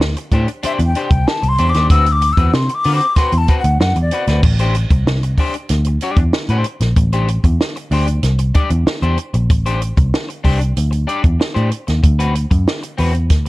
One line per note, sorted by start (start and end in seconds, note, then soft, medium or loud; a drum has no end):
0.00 0.14 D2 loud
0.00 snare loud
0.17 muted clean electric guitar stroke soft
0.17 closed hi-hat medium
0.32 0.46 A2 loud
0.32 0.48 D4 medium
0.32 0.48 G4 medium
0.32 0.47 C5 medium
0.32 kick medium
0.32 closed hi-hat medium
0.48 muted clean electric guitar stroke soft
0.48 closed hi-hat soft
0.63 0.79 D4 medium
0.63 0.80 G4 medium
0.63 0.79 C5 medium
0.63 0.72 E5 loud
0.63 muted picked electric bass stroke soft
0.63 closed hi-hat loud
0.79 0.93 E2 loud
0.79 muted clean electric guitar stroke medium
0.79 closed hi-hat medium
0.86 1.05 G5 medium
0.95 1.08 D4 medium
0.95 1.08 G4 medium
0.95 1.09 C5 medium
0.95 closed hi-hat medium
1.08 1.25 C2 medium
1.08 1.29 G5 medium
1.08 kick loud
1.08 closed hi-hat medium
1.27 1.50 A5 loud
1.27 muted clean electric guitar stroke soft
1.27 snare loud
1.42 1.57 C2 medium
1.42 muted clean electric guitar stroke medium
1.42 closed hi-hat soft
1.48 1.71 C6 loud
1.58 1.73 E2 loud
1.58 1.71 D4 medium
1.58 1.71 G4 medium
1.58 1.72 C5 medium
1.58 closed hi-hat medium
1.69 1.89 D6 loud
1.74 1.88 D#2 loud
1.74 1.88 D4 medium
1.74 1.87 G4 medium
1.74 1.87 C5 medium
1.74 snare soft
1.74 closed hi-hat medium
1.90 2.31 D2 loud
1.90 2.06 C4 medium
1.90 2.07 F#4 medium
1.90 2.05 B4 medium
1.90 2.13 E6 loud
1.90 kick loud
1.90 closed hi-hat loud
2.06 muted clean electric guitar stroke medium
2.06 closed hi-hat medium
2.12 2.34 D6 loud
2.22 muted clean electric guitar stroke medium
2.22 closed hi-hat medium
2.33 2.56 E6 medium
2.37 2.51 E2 medium
2.37 2.51 C4 medium
2.37 2.51 F#4 medium
2.37 2.50 B4 medium
2.37 kick loud
2.37 closed hi-hat medium
2.54 2.67 C3 loud
2.54 2.76 C6 medium
2.54 snare loud
2.69 muted clean electric guitar stroke medium
2.69 closed hi-hat medium
2.74 2.94 D6 loud
2.84 2.99 D3 medium
2.84 3.05 C4 medium
2.84 3.01 F#4 medium
2.84 3.00 B4 medium
2.84 open hi-hat medium
2.95 3.17 D6 loud
3.01 muted clean electric guitar stroke soft
3.01 closed hi-hat soft
3.16 3.33 C4 medium
3.16 3.33 F#4 loud
3.16 3.32 B4 loud
3.16 3.39 C6 medium
3.16 muted picked electric bass stroke soft
3.16 kick medium
3.16 snare soft
3.16 closed hi-hat loud
3.32 3.46 E2 medium
3.32 muted clean electric guitar stroke soft
3.32 closed hi-hat soft
3.38 3.58 A5 loud
3.48 3.61 C4 medium
3.48 3.61 F#4 medium
3.48 3.61 B4 medium
3.48 kick medium
3.48 closed hi-hat medium
3.59 3.79 F#5 medium
3.64 3.78 D2 medium
3.64 muted clean electric guitar stroke medium
3.64 closed hi-hat medium
3.80 3.94 F#2 medium
3.80 4.00 F#5 medium
3.80 muted clean electric guitar stroke soft
3.80 snare loud
3.96 4.09 E2 medium
3.96 muted clean electric guitar stroke soft
3.96 closed hi-hat soft
4.01 4.40 D5 medium
4.11 4.24 C4 medium
4.11 4.25 F#4 medium
4.11 4.25 B4 medium
4.11 closed hi-hat medium
4.27 4.41 D2 loud
4.27 4.41 C4 medium
4.27 4.40 F#4 medium
4.27 4.40 B4 medium
4.27 snare soft
4.27 closed hi-hat medium
4.43 4.84 A1 loud
4.43 muted clean electric guitar stroke soft
4.43 kick loud
4.43 crash loud
4.59 4.75 D4 medium
4.59 4.75 G4 medium
4.59 4.75 C5 medium
4.59 closed hi-hat medium
4.75 muted clean electric guitar stroke soft
4.75 closed hi-hat medium
4.91 5.04 C2 loud
4.91 muted clean electric guitar stroke medium
4.91 kick loud
4.91 closed hi-hat medium
5.07 5.34 C2 loud
5.07 snare loud
5.23 muted clean electric guitar stroke medium
5.23 closed hi-hat medium
5.38 5.54 D4 medium
5.38 5.55 G4 medium
5.38 5.54 C5 medium
5.38 kick medium
5.38 open hi-hat medium
5.54 muted clean electric guitar stroke soft
5.54 closed hi-hat medium
5.69 5.97 D2 medium
5.69 snare soft
5.69 closed hi-hat loud
5.85 muted clean electric guitar stroke soft
5.85 closed hi-hat medium
6.01 6.22 D4 medium
6.01 6.18 G4 medium
6.01 6.18 D5 medium
6.01 closed hi-hat medium
6.17 6.31 E2 medium
6.17 muted clean electric guitar stroke medium
6.17 kick loud
6.17 closed hi-hat medium
6.33 muted clean electric guitar stroke soft
6.33 snare loud
6.49 6.63 A2 medium
6.49 6.65 D4 medium
6.49 6.65 G4 medium
6.49 6.66 C5 loud
6.49 closed hi-hat soft
6.64 muted clean electric guitar stroke soft
6.64 closed hi-hat medium
6.80 6.94 A#1 medium
6.80 muted clean electric guitar stroke soft
6.80 snare soft
6.80 closed hi-hat medium
6.96 7.38 A1 loud
6.96 muted clean electric guitar stroke soft
6.96 kick loud
6.96 closed hi-hat loud
7.13 7.28 D4 medium
7.13 7.29 G4 medium
7.13 7.28 C5 medium
7.13 closed hi-hat medium
7.28 muted clean electric guitar stroke soft
7.28 closed hi-hat medium
7.44 7.58 E2 medium
7.44 muted clean electric guitar stroke soft
7.44 kick medium
7.44 closed hi-hat medium
7.61 snare loud
7.76 muted clean electric guitar stroke medium
7.76 closed hi-hat medium
7.91 8.19 D2 medium
7.91 8.07 D4 medium
7.91 8.07 G4 medium
7.91 8.06 C5 loud
7.91 open hi-hat medium
8.07 muted clean electric guitar stroke soft
8.07 closed hi-hat medium
8.23 8.51 C2 medium
8.23 snare soft
8.23 closed hi-hat loud
8.39 muted clean electric guitar stroke soft
8.39 closed hi-hat medium
8.54 8.71 D4 medium
8.54 8.70 G4 medium
8.54 8.70 D5 loud
8.54 kick loud
8.54 closed hi-hat medium
8.70 8.84 E2 medium
8.70 muted clean electric guitar stroke soft
8.70 closed hi-hat medium
8.87 muted picked electric bass stroke medium
8.87 muted clean electric guitar stroke soft
8.87 snare loud
9.02 9.16 E2 medium
9.02 9.17 D4 medium
9.02 9.18 G4 medium
9.02 9.18 C5 loud
9.02 closed hi-hat soft
9.18 muted clean electric guitar stroke soft
9.18 closed hi-hat medium
9.34 9.50 A#1 medium
9.34 muted clean electric guitar stroke medium
9.34 closed hi-hat medium
9.50 9.91 A1 loud
9.50 muted clean electric guitar stroke soft
9.50 kick loud
9.50 closed hi-hat loud
9.66 9.81 D4 medium
9.66 9.81 G4 medium
9.66 9.81 C5 medium
9.66 closed hi-hat medium
9.82 muted clean electric guitar stroke soft
9.82 closed hi-hat medium
9.97 10.11 C2 loud
9.97 muted clean electric guitar stroke medium
9.97 kick medium
9.97 closed hi-hat medium
10.14 snare loud
10.29 muted clean electric guitar stroke soft
10.29 closed hi-hat medium
10.44 10.72 C2 medium
10.44 10.60 D4 medium
10.44 10.59 G4 loud
10.44 10.58 C5 loud
10.44 kick medium
10.44 open hi-hat medium
10.60 muted clean electric guitar stroke soft
10.60 closed hi-hat soft
10.77 11.04 D2 medium
10.77 closed hi-hat medium
10.91 muted clean electric guitar stroke soft
10.91 closed hi-hat soft
11.07 11.24 D4 medium
11.07 11.23 G4 medium
11.07 11.22 D5 medium
11.07 closed hi-hat medium
11.23 11.38 E2 medium
11.23 muted clean electric guitar stroke medium
11.23 kick loud
11.23 closed hi-hat medium
11.40 muted clean electric guitar stroke soft
11.40 snare loud
11.54 11.70 A2 loud
11.54 11.70 D4 medium
11.54 11.70 G4 medium
11.54 11.71 C5 medium
11.54 closed hi-hat soft
11.71 muted clean electric guitar stroke soft
11.71 closed hi-hat medium
11.87 12.02 D#2 medium
11.87 muted clean electric guitar stroke soft
11.87 snare soft
11.87 closed hi-hat medium
12.03 12.45 D2 medium
12.03 muted clean electric guitar stroke soft
12.03 kick loud
12.03 closed hi-hat loud
12.19 12.34 C4 medium
12.19 12.34 F#4 medium
12.19 12.34 B4 loud
12.19 closed hi-hat medium
12.35 muted clean electric guitar stroke soft
12.35 closed hi-hat medium
12.51 12.65 F#2 medium
12.51 muted clean electric guitar stroke medium
12.51 kick medium
12.51 closed hi-hat medium
12.68 snare loud
12.83 muted clean electric guitar stroke soft
12.83 closed hi-hat medium
12.98 13.30 E2 medium
12.98 13.14 C4 medium
12.98 13.13 F#4 medium
12.98 13.12 B4 loud
12.98 open hi-hat medium
13.14 muted clean electric guitar stroke soft
13.14 closed hi-hat soft
13.30 13.49 D2 medium
13.30 kick medium
13.30 snare soft
13.30 closed hi-hat loud
13.46 muted clean electric guitar stroke soft